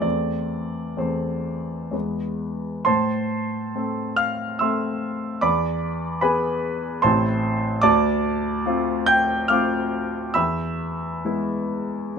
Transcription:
0.00 0.96 E2 soft
0.00 0.96 A3 soft
0.00 0.97 C4 soft
0.00 0.97 A4 soft
0.00 0.99 D5 medium
0.97 1.89 E2 soft
0.97 1.90 A3 soft
0.97 1.90 C4 soft
0.97 1.90 A4 soft
0.97 1.93 C5 soft
1.91 2.84 E2 soft
1.91 2.84 G#3 soft
1.91 2.85 B3 soft
1.91 2.85 B4 soft
2.85 3.73 A2 medium
2.85 4.15 C5 medium
2.85 4.15 A5 medium
2.85 4.18 C6 medium
3.75 4.57 A3 soft
3.75 4.57 C4 soft
3.75 4.58 A4 soft
4.16 4.57 F5 medium
4.16 4.60 F6 medium
4.59 5.40 A3 soft
4.59 5.40 C4 soft
4.59 5.40 A4 soft
4.59 5.39 E5 soft
4.59 5.40 C6 medium
4.59 5.43 E6 medium
5.41 6.21 E2 medium
5.41 6.19 D5 medium
5.41 6.19 B5 medium
5.41 6.23 D6 medium
6.21 6.99 B3 soft
6.21 6.99 G#4 soft
6.21 6.99 B4 medium
6.21 6.99 G#5 medium
6.21 7.03 B5 medium
7.02 7.81 A1 medium
7.02 7.80 A3 soft
7.02 7.80 C4 soft
7.02 7.80 E4 soft
7.02 7.79 C5 medium
7.02 7.79 A5 medium
7.02 7.83 C6 medium
7.82 8.63 D2 medium
7.82 9.03 D5 medium
7.82 9.03 A5 medium
7.82 9.07 D6 medium
8.66 9.46 A3 soft
8.66 9.46 C4 medium
8.66 9.46 F4 medium
9.06 9.47 G5 medium
9.06 9.49 G6 loud
9.48 10.32 A3 soft
9.48 10.32 C4 soft
9.48 10.33 F4 medium
9.48 10.32 F5 medium
9.48 10.32 D6 medium
9.48 10.35 F6 medium
10.34 11.23 E2 medium
10.34 12.13 E5 medium
10.34 12.13 B5 medium
10.34 12.16 E6 medium
11.25 12.13 G#3 soft
11.25 12.13 B3 soft
11.25 12.13 E4 soft

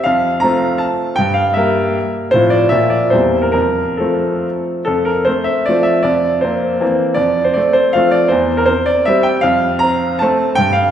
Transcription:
0.04 0.42 F2 medium
0.04 0.42 F5 medium
0.40 1.14 A3 soft
0.40 1.14 C4 soft
0.40 1.14 F4 soft
0.40 0.80 A#5 medium
0.78 1.16 A5 medium
1.16 1.56 G2 medium
1.16 1.36 G5 medium
1.34 1.55 F5 medium
1.54 2.29 G3 soft
1.54 2.29 A#3 soft
1.54 2.29 A#4 soft
1.54 2.13 E5 medium
2.31 2.71 A2 soft
2.31 2.68 F3 soft
2.31 2.68 C4 soft
2.31 2.69 F4 soft
2.31 2.51 C5 medium
2.50 2.71 D5 medium
2.69 3.11 A#2 soft
2.69 3.09 F3 soft
2.69 3.09 A#3 soft
2.69 3.09 F4 soft
2.69 2.91 E5 medium
2.90 3.11 D5 medium
3.10 3.53 E2 soft
3.10 3.51 G3 soft
3.10 3.51 A#3 soft
3.10 3.51 C4 soft
3.10 3.43 C5 medium
3.42 3.50 A#4 soft
3.52 3.98 F2 soft
3.52 3.99 A#4 medium
3.97 4.82 F3 soft
3.97 4.82 A3 soft
3.97 4.83 C4 soft
3.97 4.65 A4 soft
4.85 5.26 F2 soft
4.85 5.05 A4 medium
5.05 5.26 A#4 medium
5.25 5.63 A3 soft
5.25 5.63 C4 soft
5.25 5.46 C5 medium
5.44 5.65 E5 medium
5.66 6.01 F3 soft
5.66 6.01 A3 soft
5.66 6.02 C4 soft
5.66 5.85 D5 medium
5.83 6.03 E5 medium
6.03 6.42 F2 soft
6.03 6.42 D5 medium
6.41 6.78 A#3 soft
6.41 6.78 C4 soft
6.41 6.99 C5 medium
6.80 7.14 E3 soft
6.80 7.14 A#3 soft
6.80 7.14 C4 soft
7.14 7.55 F2 soft
7.14 7.45 D5 medium
7.44 7.56 C5 medium
7.53 7.91 A3 soft
7.53 7.91 C4 soft
7.53 7.75 D5 medium
7.73 7.94 C5 medium
7.93 8.27 F3 soft
7.93 8.28 A3 soft
7.93 8.28 C4 soft
7.93 8.12 F5 medium
8.11 8.30 D5 medium
8.28 8.67 E2 medium
8.28 8.57 C5 medium
8.57 8.67 A#4 medium
8.66 9.03 C4 soft
8.66 8.86 C5 medium
8.86 9.06 D5 medium
9.05 9.41 G3 soft
9.05 9.41 C4 soft
9.05 9.25 E5 medium
9.23 9.43 G5 medium
9.41 9.80 F2 medium
9.41 9.81 F5 medium
9.79 10.17 C4 soft
9.79 10.20 A#5 medium
10.19 10.54 A3 soft
10.19 10.54 C4 medium
10.19 10.56 A5 medium
10.55 10.91 G2 medium
10.55 10.74 G5 medium
10.73 10.91 F5 medium

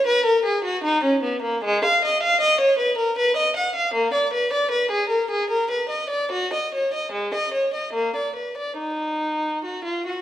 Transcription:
0.07 0.25 B4 loud
0.25 0.44 A#4 medium
0.45 0.63 G#4 medium
0.65 0.82 F#4 medium
0.84 1.01 D#4 medium
1.04 1.21 C#4 medium
1.23 1.41 B3 medium
1.42 1.61 A#3 medium
1.64 1.82 G#3 loud
1.85 2.02 F5 medium
2.05 2.22 D#5 medium
2.23 2.40 F5 medium
2.41 2.59 D#5 medium
2.60 2.78 C#5 medium
2.78 2.97 B4 medium
2.98 3.16 A#4 medium
3.18 3.36 B4 medium
3.37 3.54 D#5 medium
3.57 3.74 F#5 medium
3.76 3.93 F5 medium
3.94 4.11 A#3 medium
4.14 4.31 D5 medium
4.33 4.51 B4 medium
4.53 4.71 D5 medium
4.71 4.89 B4 medium
4.91 5.09 G#4 medium
5.09 5.28 A#4 medium
5.31 5.48 G#4 medium
5.50 5.68 A#4 medium
5.71 5.88 B4 medium
5.89 6.08 D#5 medium
6.10 6.30 D5 medium
6.32 6.51 F#4 medium
6.53 6.72 D#5 medium
6.74 6.92 C#5 medium
6.94 7.12 D#5 medium
7.12 7.32 G#3 medium
7.34 7.53 D#5 medium
7.54 7.73 C#5 medium
7.74 7.94 D#5 medium
7.93 8.14 A#3 medium
8.16 8.36 D5 soft
8.36 8.57 B4 soft
8.57 8.79 D5 soft
8.78 9.62 D#4 medium
9.64 9.85 F#4 medium
9.84 10.06 F4 medium
10.07 10.22 F#4 medium

